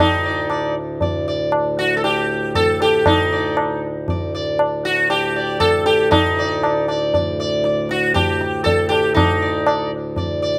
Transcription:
0.00 D2 A2 D#4
0.25 D5
0.50 D5, tabla na
1.01 D5, tabla tin, tabla ge
1.28 D5
1.52 tabla na
1.79 F#4
1.97 A4
2.04 G4, tabla na
2.55 A4, tabla tin, tabla ge
2.81 G4, tabla na
3.06 D#4, tabla na, tabla ge
3.32 D5
3.57 tabla na
4.08 D5, tabla tin, tabla ge
4.35 D5
4.59 tabla na
4.85 F#4
5.10 G4, tabla na
5.36 D5
5.60 A4, tabla na, tabla ge
5.86 G4, tabla te
6.11 D2 A2 D#4, tabla na, tabla ge
6.39 D5
6.63 D5, tabla na
6.88 D5, tabla na
7.14 D5, tabla tin, tabla ge
7.40 D5
7.64 D5, tabla te
7.89 F#4, tabla te
8.14 G4, tabla na, tabla ge
8.41 tabla te
8.64 A4, tabla tin, tabla ge
8.89 G4, tabla na
9.14 D#4, tabla na, tabla ge
9.42 D5
9.67 D5, tabla na
10.16 D5, tabla tin, tabla ge
10.42 D5

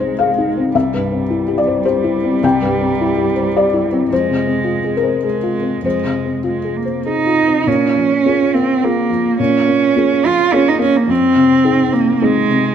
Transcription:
Already playing: C2 C3 G#3 C4 D#4 G#4 D#5
0.00 C5
0.19 G#4 F5
0.38 D#4
0.57 C4
0.74 C2 G3 E5
0.94 G2
1.12 C4
1.30 E4
1.48 G4
1.58 D5
1.67 C5
1.85 G4 C5
2.04 E4
2.23 C4
2.43 C2 G5
2.62 G2
2.81 C4
3.01 E4
3.17 G4
3.36 C5
3.56 G4 D5
3.73 E4
3.92 C4
4.10 F2 G#3 C5
4.30 C3
4.47 C4
4.64 F4
4.84 G#4
4.97 A#4
5.03 C5
5.24 G#3 G#4
5.43 F4
5.63 C4
5.82 F2 G#3 C5
6.04 C3
6.25 C4
6.44 G#3 F4
6.65 G#4
6.77 A#3
6.85 C5
7.06 D#4 G#4
7.26 F4
7.47 C4
7.67 A#2 C#4
7.96 F3
8.26 A#3 F4 G#4
8.54 A#3 C4
8.84 A#3 F4 G#4
9.10 F3
9.40 A#2 C#4
9.68 A#3
9.96 A#3 F4 G#4
10.24 F3 F4
10.52 A#3 C#4 F4 G#4
10.69 D#4
10.79 A#3 C#4
10.97 A#3
11.07 F2 C4
11.36 C3
11.64 C4 D#4 G#4
11.92 A#3 C4
12.21 G#3 C4 D#4 G#4
12.50 C3

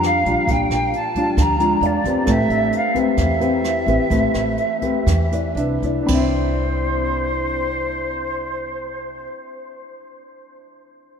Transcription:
Already playing: F2 F3 G3 D4 F4 G4 A#4 F5
0.03 F5, cross-stick, closed hi-hat
0.25 A#1 G3 D4 F4, kick, closed hi-hat
0.47 A#1 A#2 G3 D4 F4 G5, kick, closed hi-hat
0.70 A#1, cross-stick, closed hi-hat
0.93 A5, closed hi-hat
1.15 G3 D4 F4, kick, closed hi-hat
1.37 D2 F3, kick, cross-stick, closed hi-hat
1.41 A#5
1.60 G#3 D4 F4, closed hi-hat
1.81 E2 D5 F5, closed hi-hat
1.86 D5
2.04 E2 C4 G4 B4, kick, closed hi-hat
2.25 A1 A3 C4 A4 B4, kick, cross-stick, closed hi-hat
2.30 E5 G5
2.49 A1, closed hi-hat
2.72 closed hi-hat
2.77 F5
2.94 C4 G4 B4, kick, closed hi-hat
2.99 E5
3.17 E2 E3, kick, cross-stick, closed hi-hat
3.40 C4 G4 B4, closed hi-hat
3.64 cross-stick, closed hi-hat
3.86 A1 C4 G4 B4, kick, closed hi-hat
4.10 A1 A3 C4 G4 B4, kick, closed hi-hat
4.34 A1, cross-stick, closed hi-hat
4.58 closed hi-hat
4.81 C4 G4 B4, kick, closed hi-hat
5.06 E2 E3, kick, cross-stick, closed hi-hat
5.31 E4 B4 D5, closed hi-hat
5.55 C2 D4 B4, closed hi-hat
5.59 E5
5.82 C2 E4 D5, kick, closed hi-hat
6.03 C4 D4 B5
6.08 C2 E4 C5, kick, crash
6.15 E5
6.20 D5

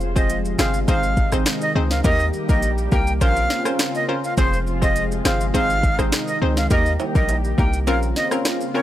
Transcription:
Already playing: F1 C3 F3 G#3 C4 F4 G#4 C5
0.01 maracas
0.16 C4 F4 G#4 C5 D#5, kick, maracas
0.30 closed hi-hat, maracas
0.45 maracas
0.59 G1 C4 F4 G#4 C5 F5, cross-stick, snare, maracas
0.74 maracas
0.88 G#1 D#3 C4 D#4 G#4 C5 F5, kick, closed hi-hat, maracas
1.03 maracas
1.17 kick, maracas
1.32 G#1 C4 D#4 G#4 C5, cross-stick, maracas
1.46 cross-stick, snare, closed hi-hat, maracas
1.61 D#5, maracas
1.75 C#2 C4 D#4 G#4 C5
1.91 F5, snare, maracas
2.04 D#2 G3 A#3 D#4 G4 A#4 D#5, kick, closed hi-hat, maracas
2.20 maracas
2.33 maracas
2.49 A#1 A#3 D#4 G4 A#4 D#5, kick, maracas
2.62 closed hi-hat, maracas
2.78 maracas
2.92 C2 A#3 D#4 G4 A#4 G5, kick, maracas
3.07 maracas
3.21 A#1 C#3 C4 C#4 F4 A#4 C5 F5, kick, closed hi-hat, maracas
3.36 maracas
3.50 snare, maracas
3.65 C#4 F4 A#4 C5, cross-stick, maracas
3.79 cross-stick, snare, closed hi-hat, maracas
3.95 D#5, maracas
4.09 C#4 F4 A#4 C5
4.24 F5, maracas
4.37 F1 C3 F3 G#3 C4 F4 G#4 C5, kick, closed hi-hat, maracas
4.53 maracas
4.67 maracas
4.82 C4 F4 G#4 C5 D#5, kick, maracas
4.96 closed hi-hat, maracas
5.12 maracas
5.25 G1 C4 F4 G#4 C5 F5, cross-stick, snare, maracas
5.41 maracas
5.54 G#1 D#3 C4 D#4 G#4 C5 F5, kick, closed hi-hat, maracas
5.70 maracas
5.83 kick, maracas
5.99 G#1 C4 D#4 G#4 C5, cross-stick, maracas
6.12 cross-stick, snare, closed hi-hat, maracas
6.28 D#5, maracas
6.42 C#2 C4 D#4 G#4 C5
6.57 F5, snare, maracas
6.70 D#2 G3 A#3 D#4 G4 A#4 D#5, kick, closed hi-hat, maracas
6.86 maracas
7.00 high timbale, maracas
7.15 A#1 A#3 D#4 G4 A#4 D#5, kick, maracas
7.29 closed hi-hat, high timbale, maracas
7.44 maracas
7.58 C2 A#3 D#4 G4 A#4 G5, kick, maracas
7.73 maracas
7.87 A#1 C#3 A#3 C4 C#4 F4 A#4 F5, closed hi-hat, maracas
8.03 maracas
8.16 D#5, snare, maracas
8.31 C4 C#4 F4 A#4, cross-stick, maracas
8.45 cross-stick, snare, closed hi-hat, maracas
8.61 maracas
8.74 C4 C#4 F4 A#4 C#5

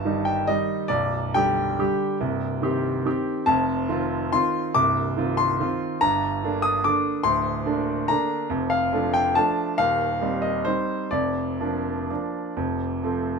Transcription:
Already playing: G1 G2 A5
0.05 D#3 G3 D#4
0.25 G5
0.47 D#3 G3 D#4 D#5
0.88 B0 B1 D5
1.34 D3 G3 G4 G5
1.79 D3 G3 G4
2.21 C1 C2
2.62 D#3 C4 G4
3.05 D#3 C4 G4
3.46 F1 F2 A5
3.89 D#3 C4 F4
4.33 D#3 C4 F4 C6
4.74 C1 C2 D6
5.17 D#3 C4 F4
5.37 C6
5.60 D#3 C4 F4
6.01 G1 G2 A#5
6.44 D3 A#3 D4
6.62 D#6
6.84 D3 A#3 D4 D6
7.23 D1 D2 C6
7.66 D3 A#3 D4
8.08 D3 A#3 D4 A#5
8.50 F1 F2
8.70 F5
8.92 F3 A3 D4
9.14 G5
9.35 F3 A3 D4 A5
9.78 D#1 D#2 F5
10.21 G3 C4 D#4
10.42 D#5
10.65 G3 C4 D#4 C5
11.11 F1 F2 D5
11.60 F3 A#3 D4
12.10 F3 A#3 D4
12.57 F1 F2
13.03 F3 A3 C4

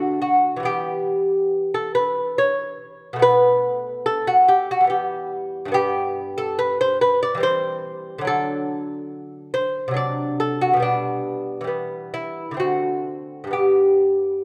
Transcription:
Already playing: D3 A3 D4 F#4
0.22 F#4
0.56 E3 G3
0.63 B3 G4
1.74 A4
1.95 B4
2.38 C#5
3.13 B2 A3
3.19 B3 B4
4.06 A4
4.27 F#4
4.48 G4
4.71 F#4
4.81 E2 G3
4.87 B3 G4
5.65 G2 G3
5.72 B3 G4
6.38 A4
6.59 B4
6.81 C5
7.01 B4
7.23 D5
7.35 E3 G3
7.40 C4 C5
8.18 D3 F#3
8.25 D4 A4
9.54 C5
9.88 C3 F#3
9.94 D4 D5
10.40 A4
10.61 F#4
10.73 B2 G3
10.80 B3 D4
11.61 E3 G3
11.67 B3
12.14 E4
12.51 D3 A3
12.57 C4 F#4
13.44 G2 G3
13.51 B3 G4

